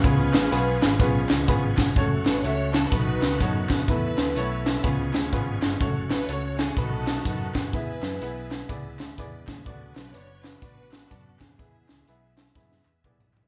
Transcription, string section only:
0.00 1.26 F4 medium
0.00 1.26 G#4 medium
0.00 1.30 B4 medium
2.25 2.42 B4 medium
2.43 2.72 C#5 loud
2.73 2.92 A4 loud
2.91 3.84 D#4 medium
2.91 3.84 F#4 medium
2.91 3.39 B4 loud
3.39 3.53 A4 medium
3.69 5.11 E4 medium
3.69 5.10 B4 loud
6.10 6.27 B4 loud
6.30 6.59 C#5 loud
6.60 6.78 G#4 medium
6.77 7.69 D#4 medium
6.77 7.69 F#4 medium
6.77 7.26 A4 loud
7.29 7.55 A4 medium
7.56 8.96 E4 medium
7.56 8.96 G#4 medium
7.56 8.97 B4 loud
9.96 10.13 B4 loud
10.13 10.44 C#5 loud
10.42 10.60 B4 loud
10.61 11.55 D4 medium
10.61 11.55 F#4 medium
10.61 11.06 B4 loud
11.09 11.40 A4 medium
11.39 12.81 B3 medium
11.39 12.81 E4 medium
11.39 12.80 G#4 medium

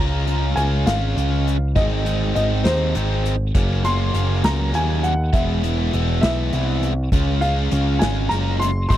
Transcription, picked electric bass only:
0.00 0.53 C#2 medium
0.56 0.85 C#2 medium
0.86 1.14 G#1 loud
1.16 1.78 C#2 medium
1.76 2.32 G#1 medium
2.36 2.64 G#1 medium
2.66 2.94 D#2 loud
2.95 3.51 G#1 medium
3.55 4.11 F#1 medium
4.14 4.42 F#1 medium
4.44 4.72 C#2 medium
4.74 5.30 D#2 medium
5.34 5.89 E1 medium
5.94 6.21 E1 medium
6.23 6.51 B1 medium
6.53 7.09 C2 medium
7.12 7.68 C#2 medium
7.72 8.00 C#2 medium
8.02 8.29 G#1 medium
8.31 8.86 F#1 medium
8.90 8.97 G#1 medium

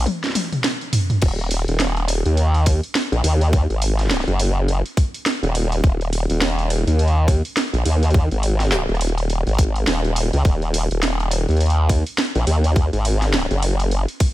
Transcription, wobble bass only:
1.22 1.65 D#1 loud
1.68 2.23 D#1 loud
2.26 2.81 D#2 loud
3.12 3.22 A#1 loud
3.24 3.67 D#2 loud
3.70 4.25 G#1 loud
4.27 4.83 F#1 loud
5.43 5.82 D#1 loud
5.84 6.27 D#1 loud
6.29 6.84 D#1 loud
6.87 7.42 D#2 loud
7.73 7.83 A#1 loud
7.85 8.29 D#2 loud
8.32 8.87 G#1 loud
8.89 9.44 D#1 loud
9.47 9.86 G#1 loud
9.87 10.31 D#1 loud
10.33 10.43 C#2 loud
10.45 10.88 D#1 loud
10.91 11.46 D#1 loud
11.49 12.04 D#2 loud
12.35 12.45 A#1 loud
12.47 12.90 D#2 loud
12.93 13.48 G#1 loud
13.51 14.06 F#1 loud

